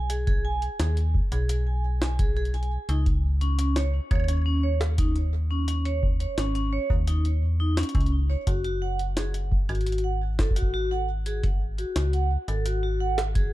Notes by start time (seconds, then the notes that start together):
Already playing: B1
0.10 G#4, closed hi-hat
0.27 G#4, kick, closed hi-hat
0.45 G#5
0.62 closed hi-hat
0.80 D#2 G#4, snare, closed hi-hat
0.97 closed hi-hat
1.14 kick
1.32 B1 G#4, closed hi-hat
1.49 G#4, closed hi-hat
1.67 G#5
2.02 G#5, snare
2.19 G#4, kick, closed hi-hat
2.37 G#4, closed hi-hat
2.45 closed hi-hat
2.54 G#5, closed hi-hat
2.63 closed hi-hat
2.89 C#2 D#4, closed hi-hat
3.06 kick, closed hi-hat
3.41 C#4, closed hi-hat
3.59 C#4, closed hi-hat
3.76 C#5, snare, closed hi-hat
4.11 D#2 C#5, kick, closed hi-hat, high woodblock
4.15 high woodblock
4.20 high woodblock
4.24 high woodblock
4.28 C#4, closed hi-hat, high woodblock
4.33 high woodblock
4.37 high woodblock
4.42 high woodblock
4.46 C#4
4.63 C#5
4.81 snare
4.98 D#4, kick, closed hi-hat
5.16 closed hi-hat
5.51 C#4
5.68 C#4, closed hi-hat
5.85 C#5, closed hi-hat
6.03 kick
6.20 C#5, closed hi-hat
6.38 G#1 C#4, snare, closed hi-hat
6.55 C#4, closed hi-hat
6.73 C#5
6.90 D#2, kick
7.07 D#4, closed hi-hat
7.25 closed hi-hat
7.42 E2
7.60 D#4
7.77 C#4, snare, closed hi-hat
7.83 closed hi-hat
7.89 closed hi-hat
7.95 C#2 C#4, kick, closed hi-hat
8.01 closed hi-hat
8.06 closed hi-hat
8.30 C#5
8.47 F#1 F#4, kick, closed hi-hat
8.64 F#4, closed hi-hat
8.82 F#5
8.99 closed hi-hat
9.17 G#4, snare, closed hi-hat
9.34 closed hi-hat
9.52 kick
9.69 G#1 F#4, closed hi-hat, high woodblock
9.75 closed hi-hat
9.81 closed hi-hat
9.87 F#4, closed hi-hat
9.92 closed hi-hat
9.98 closed hi-hat
10.04 F#5
10.39 A4, kick, snare
10.51 kick
10.56 F#4, closed hi-hat
10.62 kick
10.74 F#4
10.91 F#5
11.26 G#4, closed hi-hat
11.44 kick, closed hi-hat
11.78 F#4, closed hi-hat
11.96 C#2 F#4, snare, closed hi-hat
12.13 F#5, closed hi-hat
12.48 G#1 A4, closed hi-hat
12.66 F#4, closed hi-hat
12.83 F#4
13.00 F#5
13.18 snare
13.35 G#4, kick, closed hi-hat